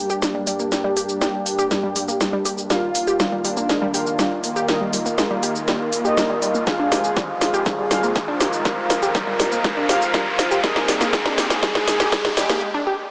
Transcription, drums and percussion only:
0.10 shaker
0.22 snare, shaker
0.47 open hi-hat, shaker
0.59 shaker
0.72 snare, shaker
0.97 open hi-hat, shaker
1.09 shaker
1.21 snare, shaker
1.46 open hi-hat, shaker
1.59 shaker
1.71 snare, shaker
1.96 open hi-hat, shaker
2.08 shaker
2.21 snare, shaker
2.45 open hi-hat, shaker
2.58 shaker
2.70 snare, shaker
2.95 open hi-hat, shaker
3.07 shaker
3.20 snare, shaker
3.45 open hi-hat, shaker
3.57 shaker
3.69 snare, shaker
3.94 open hi-hat, shaker
4.07 shaker
4.19 snare, shaker
4.44 open hi-hat, shaker
4.56 shaker
4.69 snare, shaker
4.93 open hi-hat, shaker
5.06 shaker
5.18 snare, shaker
5.43 open hi-hat, shaker
5.55 shaker
5.68 snare, shaker
5.93 open hi-hat, shaker
6.05 shaker
6.17 snare, shaker
6.42 open hi-hat, shaker
6.55 shaker
6.67 kick, snare, shaker
6.92 snare, open hi-hat, shaker
7.04 shaker
7.16 kick, snare, shaker
7.41 snare, open hi-hat, shaker
7.54 shaker
7.66 kick, snare, shaker
7.91 snare, open hi-hat, shaker
8.03 shaker
8.16 kick, snare, shaker
8.40 snare, open hi-hat, shaker
8.53 shaker
8.65 kick, snare, shaker
8.90 snare, open hi-hat, shaker
9.02 shaker
9.15 kick, snare, shaker
9.40 snare, open hi-hat, shaker
9.52 shaker
9.64 kick, snare, shaker
9.89 snare, open hi-hat, shaker
10.02 shaker
10.14 kick, snare, shaker
10.39 snare, open hi-hat, shaker
10.51 shaker
10.64 kick, snare, shaker
10.76 snare
10.88 snare, open hi-hat, shaker
11.01 snare, shaker
11.13 kick, snare, shaker
11.26 snare
11.38 snare, open hi-hat, shaker
11.50 snare, shaker
11.63 kick, snare, shaker
11.75 snare
11.88 snare, open hi-hat, shaker
12.00 snare, shaker
12.12 kick, snare, shaker
12.25 snare
12.37 snare, open hi-hat, shaker
12.50 snare, shaker

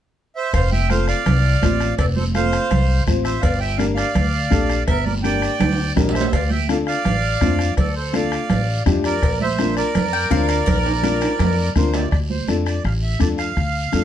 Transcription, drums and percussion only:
0.53 bombo low, bombo rim, cowbell, long guiro
0.72 high conga
0.90 bombo rim, high conga, short guiro
1.08 bombo rim, short guiro
1.26 bombo rim, cowbell, low conga, long guiro
1.63 bombo low, bombo rim, high conga, low timbale, short guiro
1.80 bombo rim, short guiro
1.99 bombo low, bombo rim, cowbell, long guiro
2.16 high conga
2.35 bombo rim, high conga, short guiro
2.53 bombo rim, short guiro
2.70 bombo rim, cowbell, low conga, long guiro
3.07 bombo low, bombo rim, high conga, short guiro
3.25 bombo rim, short guiro
3.43 bombo low, bombo rim, cowbell, long guiro
3.79 bombo rim, high conga, short guiro
3.98 bombo rim, short guiro
4.15 bombo rim, cowbell, low conga, long guiro
4.51 bombo low, bombo rim, high conga, short guiro
4.70 bombo rim, short guiro
4.88 bombo low, bombo rim, cowbell, long guiro
5.06 high conga
5.24 bombo rim, high conga, short guiro
5.42 bombo rim, short guiro
5.60 bombo rim, cowbell, low conga, high timbale, long guiro
5.72 high timbale
5.97 bombo low, bombo rim, high conga, low conga, low timbale, short guiro
6.09 low timbale
6.15 bombo rim, short guiro
6.21 low timbale
6.33 bombo low, bombo rim, cowbell, long guiro
6.50 high conga
6.69 bombo rim, high conga, short guiro
6.87 bombo rim, short guiro
7.05 bombo rim, cowbell, low conga, long guiro
7.41 bombo low, bombo rim, high conga, low timbale, short guiro
7.59 bombo rim, short guiro
7.77 bombo low, bombo rim, cowbell, low conga, long guiro
8.14 bombo rim, high conga, short guiro
8.32 bombo rim, short guiro
8.49 bombo rim, cowbell, low conga, long guiro
8.86 bombo low, bombo rim, high conga, low conga, low timbale, short guiro
9.04 bombo rim, short guiro
9.22 bombo low, bombo rim, cowbell, long guiro
9.40 high conga
9.58 bombo rim, high conga, short guiro
9.77 bombo rim, short guiro
9.95 bombo rim, cowbell, low conga, long guiro
10.31 bombo low, bombo rim, high conga, low timbale, short guiro
10.49 bombo rim, short guiro
10.67 bombo low, bombo rim, cowbell, low conga, high timbale, long guiro
10.86 high timbale
11.03 bombo rim, high conga, short guiro
11.21 bombo rim, high timbale, short guiro
11.39 bombo rim, cowbell, low conga, low timbale, long guiro
11.76 bombo low, bombo rim, high conga, short guiro
11.94 bombo rim, low timbale, short guiro
12.11 bombo low, bombo rim, long guiro
12.30 high conga
12.48 bombo rim, high conga, short guiro
12.66 bombo rim, short guiro
12.84 bombo rim, long guiro
13.20 bombo low, bombo rim, high conga, short guiro
13.38 bombo rim, short guiro
13.56 bombo low, bombo rim, long guiro
13.92 bombo rim, high conga, short guiro

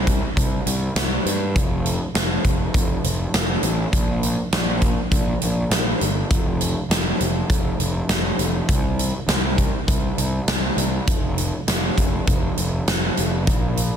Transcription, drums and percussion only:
0.07 kick, closed hi-hat
0.37 kick, closed hi-hat
0.67 closed hi-hat
0.96 snare, closed hi-hat
1.26 closed hi-hat
1.56 kick, closed hi-hat
1.86 closed hi-hat
2.15 snare, closed hi-hat
2.45 kick, closed hi-hat
2.74 kick, closed hi-hat
3.04 closed hi-hat
3.34 snare, closed hi-hat
3.63 closed hi-hat
3.93 kick, closed hi-hat
4.23 closed hi-hat
4.52 snare, closed hi-hat
4.82 kick, closed hi-hat
5.12 kick, closed hi-hat
5.41 closed hi-hat
5.71 snare, closed hi-hat
6.01 closed hi-hat
6.31 kick, closed hi-hat
6.61 closed hi-hat
6.91 snare, closed hi-hat
7.20 closed hi-hat
7.50 kick, closed hi-hat
7.80 closed hi-hat
8.09 snare, closed hi-hat
8.39 closed hi-hat
8.69 kick, closed hi-hat
8.99 closed hi-hat
9.28 snare, closed hi-hat
9.58 kick, closed hi-hat
9.88 kick, closed hi-hat
10.18 closed hi-hat
10.48 snare, closed hi-hat
10.78 closed hi-hat
11.07 kick, closed hi-hat
11.38 closed hi-hat
11.68 snare, closed hi-hat
11.98 kick, closed hi-hat
12.27 kick, closed hi-hat
12.57 closed hi-hat
12.88 snare, closed hi-hat
13.17 closed hi-hat
13.47 kick, closed hi-hat
13.77 closed hi-hat

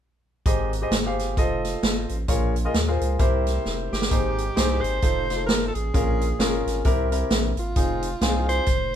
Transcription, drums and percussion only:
0.46 kick, closed hi-hat
0.73 closed hi-hat
0.91 snare, closed hi-hat
1.19 snare, closed hi-hat
1.37 kick, closed hi-hat
1.65 snare, closed hi-hat
1.83 snare, closed hi-hat
2.09 closed hi-hat
2.28 kick, closed hi-hat
2.56 closed hi-hat
2.74 snare, closed hi-hat
3.01 closed hi-hat
3.19 kick, closed hi-hat
3.47 snare, closed hi-hat
3.65 snare
3.93 snare
4.02 snare
4.11 kick, closed hi-hat
4.38 closed hi-hat
4.57 snare, closed hi-hat
4.84 closed hi-hat
5.02 kick, closed hi-hat
5.30 snare, closed hi-hat
5.49 snare, closed hi-hat
5.75 closed hi-hat
5.94 kick, closed hi-hat
6.21 closed hi-hat
6.40 snare, closed hi-hat
6.67 snare, closed hi-hat
6.85 kick, closed hi-hat
7.12 closed hi-hat
7.31 snare, closed hi-hat
7.57 closed hi-hat
7.76 kick, closed hi-hat
8.02 closed hi-hat
8.21 snare, closed hi-hat
8.49 closed hi-hat
8.66 kick, closed hi-hat

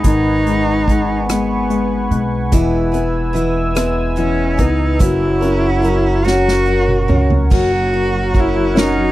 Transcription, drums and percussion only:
0.04 kick, closed hi-hat
0.47 closed hi-hat
0.88 kick, closed hi-hat
1.29 cross-stick, closed hi-hat
1.70 closed hi-hat
2.11 closed hi-hat
2.52 kick, closed hi-hat
2.94 closed hi-hat
3.35 closed hi-hat
3.76 cross-stick, closed hi-hat
4.17 closed hi-hat
4.58 kick, closed hi-hat
5.00 kick, closed hi-hat
5.42 closed hi-hat
5.84 closed hi-hat
6.27 snare
6.48 snare
6.88 mid tom
7.09 mid tom
7.30 floor tom
7.51 kick, crash
7.94 ride
8.35 kick, ride
8.77 snare, ride

